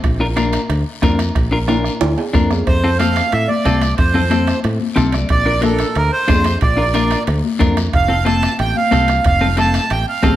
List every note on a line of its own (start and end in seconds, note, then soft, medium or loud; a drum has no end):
0.04 0.57 A#1 medium
0.04 bombo low medium
0.04 bombo rim medium
0.04 high timbale medium
0.04 long guiro medium
0.20 0.26 D4 medium
0.20 0.26 F4 medium
0.20 0.26 A#4 medium
0.36 0.60 D4 medium
0.36 0.60 F4 medium
0.36 0.60 A#4 medium
0.36 bombo rim medium
0.36 high conga medium
0.36 high timbale medium
0.36 short guiro medium
0.53 bombo rim medium
0.53 high timbale medium
0.53 short guiro medium
0.69 0.83 D2 medium
0.69 bombo rim medium
0.69 high timbale medium
0.69 long guiro medium
1.02 1.29 F2 medium
1.02 1.20 D4 medium
1.02 1.20 F4 medium
1.02 1.20 A#4 medium
1.02 bombo low medium
1.02 bombo rim medium
1.02 high conga medium
1.02 high timbale medium
1.02 short guiro medium
1.19 bombo rim medium
1.19 high timbale medium
1.19 short guiro medium
1.35 1.88 A#1 medium
1.35 bombo low medium
1.35 bombo rim medium
1.35 high timbale medium
1.35 long guiro medium
1.52 1.58 D4 medium
1.52 1.58 F4 medium
1.52 1.58 A#4 medium
1.68 1.91 D4 medium
1.68 1.92 F4 medium
1.68 1.92 A#4 medium
1.68 bombo rim medium
1.68 high conga medium
1.68 high timbale medium
1.68 short guiro medium
1.84 bombo rim medium
1.84 short guiro medium
2.01 2.15 D2 medium
2.01 bombo rim medium
2.01 high timbale medium
2.01 long guiro medium
2.18 low timbale medium
2.33 2.61 F2 medium
2.33 2.51 D4 medium
2.33 2.51 F4 medium
2.33 2.52 A#4 medium
2.33 bombo low medium
2.33 bombo rim medium
2.33 high conga medium
2.33 short guiro medium
2.51 bombo rim medium
2.51 low timbale medium
2.51 short guiro medium
2.67 3.20 F2 medium
2.67 2.98 C5 medium
2.67 bombo low medium
2.67 bombo rim medium
2.67 high timbale medium
2.67 long guiro medium
2.84 2.89 C4 medium
2.84 2.89 F4 medium
2.84 2.90 A4 medium
2.98 3.23 C4 medium
2.98 3.23 F4 medium
2.98 3.23 A4 medium
2.98 3.33 F5 loud
2.98 bombo rim medium
2.98 high conga medium
2.98 high timbale medium
2.98 short guiro medium
3.16 bombo rim medium
3.16 high timbale medium
3.16 short guiro medium
3.32 3.46 A2 medium
3.32 3.49 E5 loud
3.32 bombo rim medium
3.32 high timbale medium
3.32 long guiro medium
3.48 3.95 D5 medium
3.48 high conga medium
3.65 3.92 C2 medium
3.65 3.83 C4 medium
3.65 3.83 F4 medium
3.65 3.83 A4 medium
3.65 bombo low medium
3.65 bombo rim medium
3.65 high conga medium
3.65 high timbale medium
3.65 short guiro medium
3.82 bombo rim medium
3.82 high timbale medium
3.82 short guiro medium
3.97 4.51 F2 medium
3.97 4.59 C5 medium
3.97 bombo low medium
3.97 bombo rim medium
3.97 high timbale medium
3.97 long guiro medium
4.14 4.21 C4 medium
4.14 4.21 F4 medium
4.14 4.21 A4 medium
4.14 low conga medium
4.30 4.54 C4 medium
4.30 4.54 F4 medium
4.30 4.54 A4 medium
4.30 bombo rim medium
4.30 high conga medium
4.30 high timbale medium
4.30 short guiro medium
4.47 bombo rim medium
4.47 high timbale medium
4.47 short guiro medium
4.64 4.78 A2 medium
4.64 bombo rim medium
4.64 high timbale medium
4.64 long guiro medium
4.80 high conga medium
4.96 5.24 C2 medium
4.96 5.14 C4 medium
4.96 5.14 F4 medium
4.96 5.14 A4 medium
4.96 5.12 A5 medium
4.96 bombo low medium
4.96 bombo rim medium
4.96 high conga medium
4.96 low conga medium
4.96 high timbale medium
4.96 short guiro medium
5.12 5.28 D5 medium
5.12 bombo rim medium
5.12 high timbale medium
5.12 short guiro medium
5.29 5.83 A#1 medium
5.29 5.61 D5 loud
5.29 bombo low medium
5.29 bombo rim medium
5.29 high timbale medium
5.29 long guiro medium
5.45 5.52 D4 medium
5.45 5.52 F4 soft
5.45 5.52 A#4 medium
5.61 5.85 D4 medium
5.61 5.85 F4 medium
5.61 5.97 A4 medium
5.61 5.86 A#4 medium
5.61 bombo rim medium
5.61 high conga medium
5.61 high timbale medium
5.61 short guiro medium
5.79 bombo rim medium
5.79 high timbale medium
5.79 short guiro medium
5.95 6.09 D2 medium
5.95 6.11 A#4 medium
5.95 bombo rim medium
5.95 high timbale medium
5.95 long guiro medium
6.12 6.58 C5 loud
6.28 6.55 F2 medium
6.28 6.46 D4 medium
6.28 6.46 F4 medium
6.28 6.46 C5 medium
6.28 bombo low medium
6.28 bombo rim medium
6.28 high conga medium
6.28 high timbale medium
6.28 low timbale medium
6.28 short guiro medium
6.44 bombo rim medium
6.44 high timbale medium
6.44 short guiro medium
6.61 7.15 A#1 loud
6.61 7.23 D5 medium
6.61 bombo low medium
6.61 bombo rim medium
6.61 high timbale medium
6.61 long guiro medium
6.77 6.83 D4 medium
6.77 6.84 F4 medium
6.77 6.84 A#4 medium
6.94 7.17 D4 medium
6.94 7.18 F4 medium
6.94 7.18 A#4 medium
6.94 bombo rim medium
6.94 high conga medium
6.94 high timbale medium
6.94 short guiro medium
7.11 bombo rim medium
7.11 high timbale medium
7.11 short guiro medium
7.27 7.41 D2 medium
7.27 bombo rim medium
7.27 high timbale medium
7.27 long guiro medium
7.44 high conga medium
7.59 7.87 F2 medium
7.59 7.77 D4 medium
7.59 7.77 F4 medium
7.59 7.78 A#4 medium
7.59 bombo low medium
7.59 bombo rim medium
7.59 high conga medium
7.59 low conga medium
7.59 high timbale medium
7.59 short guiro medium
7.77 bombo rim medium
7.77 high timbale medium
7.77 short guiro medium
7.93 8.46 F1 medium
7.93 8.24 F5 loud
7.93 bombo low medium
7.93 bombo rim medium
7.93 high timbale medium
7.93 long guiro medium
8.08 8.15 C4 medium
8.08 8.15 F4 medium
8.08 8.15 A4 medium
8.25 8.48 C4 medium
8.25 8.49 F4 medium
8.25 8.49 A4 medium
8.25 8.57 A5 loud
8.25 bombo rim medium
8.25 high conga medium
8.25 high timbale medium
8.25 short guiro medium
8.43 bombo rim medium
8.43 high timbale medium
8.43 short guiro medium
8.59 8.72 A1 medium
8.59 8.76 G5 medium
8.59 bombo rim medium
8.59 high timbale medium
8.59 long guiro medium
8.75 9.24 F5 medium
8.75 high conga medium
8.91 9.19 C2 medium
8.91 9.09 C4 medium
8.91 9.09 F4 medium
8.91 9.09 A4 medium
8.91 bombo low medium
8.91 bombo rim medium
8.91 high conga medium
8.91 high timbale medium
8.91 short guiro medium
9.08 bombo rim medium
9.08 high timbale medium
9.08 short guiro medium
9.24 9.78 F1 medium
9.24 9.56 F5 loud
9.24 bombo low medium
9.24 bombo rim medium
9.24 high timbale medium
9.24 long guiro medium
9.41 9.47 C4 medium
9.41 9.47 F4 soft
9.41 9.47 A4 medium
9.41 low conga medium
9.57 9.80 C4 medium
9.57 9.80 F4 medium
9.57 9.81 A4 medium
9.57 9.92 A5 loud
9.57 bombo rim medium
9.57 high conga medium
9.57 high timbale medium
9.57 short guiro medium
9.74 bombo rim medium
9.74 high timbale medium
9.74 short guiro medium
9.90 10.04 A1 medium
9.90 10.06 G5 medium
9.90 bombo rim medium
9.90 high timbale medium
9.90 long guiro medium
10.08 10.36 F5 medium
10.23 10.36 A1 medium
10.23 10.36 C4 medium
10.23 10.36 F4 medium
10.23 10.36 A4 medium
10.23 bombo low medium
10.23 bombo rim medium
10.23 high conga medium
10.23 low conga medium
10.23 high timbale medium
10.23 low timbale medium
10.23 short guiro medium